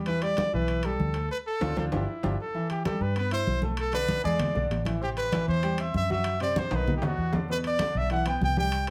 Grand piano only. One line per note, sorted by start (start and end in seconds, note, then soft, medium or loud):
0.07 0.20 E3 medium
0.07 0.20 E4 medium
0.22 0.48 G3 medium
0.22 0.48 G4 medium
0.53 0.78 E3 medium
0.53 0.79 E4 medium
0.84 1.10 G3 medium
0.84 1.10 G4 medium
1.15 1.28 A3 medium
1.15 1.28 A4 medium
1.61 1.71 C4 medium
1.61 1.71 D4 loud
1.61 1.71 F4 loud
1.77 1.87 C4 medium
1.77 1.87 D4 medium
1.77 1.87 F4 medium
1.92 2.02 D4 loud
1.92 2.02 F4 medium
1.92 2.02 G4 loud
2.23 2.33 D4 medium
2.23 2.33 F4 medium
2.23 2.33 G4 loud
2.54 2.80 E3 medium
2.54 2.80 E4 medium
2.54 2.80 E5 medium
2.85 3.10 G3 medium
2.85 3.11 G4 medium
2.85 3.11 G5 medium
3.16 3.29 B3 medium
3.16 3.29 B4 medium
3.16 3.29 B5 medium
3.32 3.57 E4 medium
3.32 3.57 E5 medium
3.32 3.57 E6 medium
3.62 3.88 A3 medium
3.62 3.88 A4 medium
3.62 3.88 A5 medium
3.93 4.18 D3 medium
3.93 4.19 D4 medium
3.93 4.19 D5 medium
4.24 4.49 G#3 medium
4.24 4.49 G#4 medium
4.24 4.49 G#5 medium
4.55 4.80 D3 medium
4.55 4.80 D4 medium
4.55 4.80 D5 medium
4.86 4.99 E3 medium
4.86 4.99 E4 medium
4.86 4.99 E5 medium
5.01 5.27 C3 medium
5.01 5.27 C4 medium
5.01 5.27 C5 medium
5.32 5.58 E3 medium
5.32 5.58 E4 medium
5.32 5.58 E5 medium
5.63 5.76 G3 medium
5.63 5.76 G4 medium
5.63 5.76 G5 medium
5.79 6.04 C4 medium
5.79 6.04 C5 medium
5.79 6.04 C6 medium
6.10 6.35 F#3 medium
6.10 6.35 F#4 medium
6.10 6.36 F#5 medium
6.41 6.66 C3 medium
6.41 6.66 C4 medium
6.41 6.66 C5 medium
6.72 6.97 D#3 medium
6.72 6.97 D#4 medium
6.72 6.98 D#5 medium
7.03 7.28 B2 medium
7.03 7.28 B3 medium
7.03 7.28 B4 medium
7.34 7.46 D3 medium
7.34 7.47 D4 medium
7.34 7.47 D5 medium
7.49 7.74 B2 medium
7.49 7.75 B3 medium
7.49 7.75 B4 medium
7.80 8.05 D3 medium
7.80 8.05 D4 medium
7.80 8.06 D5 medium
8.10 8.23 E3 medium
8.10 8.24 E4 medium
8.10 8.24 E5 medium
8.26 8.51 B3 medium
8.26 8.52 B4 medium
8.26 8.52 B5 medium
8.57 8.82 G3 medium
8.57 8.82 G4 medium
8.57 8.83 G5 medium